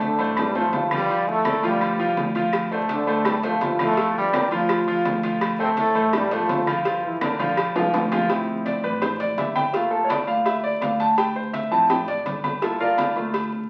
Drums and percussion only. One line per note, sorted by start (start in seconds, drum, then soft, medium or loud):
0.00 high conga medium
0.00 low agogo medium
0.19 low agogo medium
0.37 high conga soft
0.37 low conga medium
0.37 low agogo loud
0.37 claves medium
0.55 high conga soft
0.55 low conga medium
0.73 high conga medium
0.73 low timbale medium
0.73 low agogo medium
0.91 high conga medium
0.91 low agogo loud
0.91 claves medium
1.09 high conga soft
1.09 low agogo medium
1.28 high conga soft
1.45 high conga medium
1.45 low agogo loud
1.45 claves medium
1.63 low agogo medium
1.81 high conga soft
1.81 low agogo loud
1.81 claves medium
1.99 high conga soft
2.17 high conga medium
2.17 low agogo medium
2.35 high conga medium
2.35 low agogo medium
2.53 cowbell loud
2.53 high conga soft
2.53 low agogo loud
2.53 claves medium
2.72 high conga soft
2.89 cowbell medium
2.89 high conga medium
2.89 low agogo medium
3.07 low agogo medium
3.25 cowbell loud
3.25 high conga soft
3.25 low conga medium
3.25 low agogo loud
3.25 claves medium
3.43 cowbell medium
3.43 high conga soft
3.61 cowbell medium
3.61 high conga medium
3.61 low timbale medium
3.61 low agogo medium
3.79 high conga medium
3.79 low agogo loud
3.79 claves medium
3.97 cowbell loud
3.97 high conga soft
3.97 low agogo medium
4.16 high conga soft
4.33 cowbell medium
4.33 high conga loud
4.33 low agogo loud
4.33 claves medium
4.51 low agogo medium
4.69 cowbell loud
4.69 high conga soft
4.69 low agogo loud
4.69 claves medium
4.88 high conga soft
5.05 cowbell medium
5.05 high conga medium
5.05 low timbale medium
5.05 low agogo medium
5.23 cowbell medium
5.23 low agogo medium
5.41 cowbell loud
5.41 high conga soft
5.41 low agogo loud
5.41 claves medium
5.60 high conga soft
5.77 cowbell medium
5.77 high conga medium
5.77 low agogo medium
5.95 low agogo medium
6.13 cowbell loud
6.13 high conga soft
6.13 low conga medium
6.13 low agogo loud
6.13 claves medium
6.31 cowbell medium
6.31 high conga soft
6.49 cowbell medium
6.49 high conga medium
6.49 low timbale medium
6.49 low agogo medium
6.67 high conga medium
6.67 low agogo loud
6.67 claves medium
6.85 cowbell loud
6.85 high conga soft
6.85 low agogo medium
7.04 high conga soft
7.21 cowbell medium
7.21 high conga medium
7.21 low agogo loud
7.21 claves medium
7.39 high conga medium
7.39 low agogo medium
7.57 cowbell loud
7.57 low agogo loud
7.57 claves medium
7.76 low conga loud
7.76 high timbale medium
7.94 cowbell medium
7.94 low conga medium
7.94 high timbale medium
7.94 low agogo medium
8.12 cowbell medium
8.12 low conga medium
8.12 low timbale loud
8.12 low agogo medium
8.29 cowbell loud
8.29 high conga soft
8.29 low agogo loud
8.48 high conga soft
8.66 cowbell medium
8.66 high conga medium
8.66 low agogo medium
8.84 low agogo medium
9.02 cowbell loud
9.02 high conga soft
9.02 low conga medium
9.02 low agogo loud
9.20 cowbell medium
9.20 high conga soft
9.38 cowbell medium
9.38 high conga medium
9.38 low timbale medium
9.38 low agogo medium
9.56 high conga medium
9.56 low agogo loud
9.74 cowbell loud
9.74 high conga soft
9.74 low agogo medium
9.92 high conga soft
10.10 cowbell medium
10.10 high conga medium
10.10 low agogo loud
10.28 low agogo medium
10.46 cowbell loud
10.46 high conga soft
10.46 low agogo loud
10.64 high conga soft
10.81 cowbell medium
10.81 high conga medium
10.81 low agogo medium
11.00 cowbell medium
11.00 low agogo medium
11.18 cowbell loud
11.18 high conga soft
11.18 low agogo loud
11.36 high conga soft
11.54 cowbell medium
11.54 high conga medium
11.54 low agogo medium
11.72 low agogo medium
11.90 cowbell loud
11.90 high conga soft
11.90 low conga medium
11.90 low agogo loud
12.08 cowbell medium
12.08 high conga soft
12.26 cowbell medium
12.26 high conga medium
12.26 low agogo medium
12.44 high conga medium
12.44 low agogo loud
12.62 cowbell loud
12.62 high conga soft
12.62 low agogo medium
12.80 high conga soft
12.98 cowbell medium
12.98 high conga medium
12.98 low agogo loud
13.16 low agogo medium
13.34 cowbell medium
13.34 high conga soft
13.34 low agogo loud
13.52 high conga soft